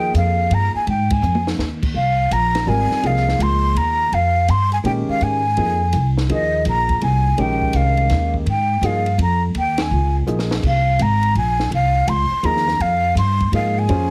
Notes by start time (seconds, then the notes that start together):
Already playing: D#2 F3 A#3 D#4 G#4 G5
0.14 F2 F5, hi-hat pedal, ride
0.50 G2 A#5, ride
0.74 G#5, muted upright bass stroke
0.87 G#2 G5, ride
1.10 G#5, kick, ride
1.22 F2, hi-hat pedal
1.35 high tom
1.47 snare
1.58 D#2, snare
1.83 kick, crash
1.94 C2 F5
2.31 A#1 A#5, hi-hat pedal, ride
2.55 snare, ride
2.66 G#1 G3 C4 F4 A#4 G#5
2.91 muted upright bass stroke, snare
3.03 C2 F3 A#3 D#4 G#4 F5, ride
3.17 snare
3.28 snare
3.39 C#2 C6, hi-hat pedal, ride
3.75 D#2 A#5, ride
4.12 F2 F5, ride
4.48 G2 C6, hi-hat pedal, ride
4.72 G#5, ride
4.84 A#2 D#3 G#3 C#4 G4 G5, ride
5.08 F5, muted upright bass stroke
5.21 G#2 G#5, ride
5.57 F2 F3 A#3 D#4 G#4, ride
5.93 C2, hi-hat pedal, ride
6.17 snare
6.29 D#2 F3 A#3 D#4 G#4 D#5, ride
6.65 A#1 A#5, hi-hat pedal, ride
6.89 kick, ride
7.01 C2 G#5, ride
7.38 A#1 D#3 G#3 C#4 G4 G5, ride
7.62 kick
7.73 C2 F5, hi-hat pedal, ride
7.97 ride
8.10 D#2, snare, ride
8.34 kick
8.46 G#2, ride
8.50 G5
8.81 G2 F3 A#3 D#4 G#4, hi-hat pedal, ride
8.86 F5
9.06 ride
9.18 F2 A#5, ride
9.55 D#2 G5, ride
9.78 snare, ride
9.82 G#5
9.91 C#2
10.26 A#1 F3 A#3 D#4 G#4, hi-hat pedal
10.39 snare
10.51 snare
10.63 C2, kick, crash
10.67 F5
10.99 G#1 A#5, hi-hat pedal, ride
11.23 ride
11.35 A#1 G#5, ride
11.60 snare
11.71 C2 F5, ride
12.07 C#2 C6, hi-hat pedal, ride
12.31 muted upright bass stroke
12.43 D#2 F3 A#3 D#4 G#4 A#5, ride
12.57 snare
12.68 snare
12.79 F2 F5, ride
13.15 G2 C6, hi-hat pedal, ride
13.40 kick, ride
13.52 G#2 F3 A#3 D#4 G#4 F5, ride
13.79 G#5
13.89 F2 C#4 F4 G#4 C5, ride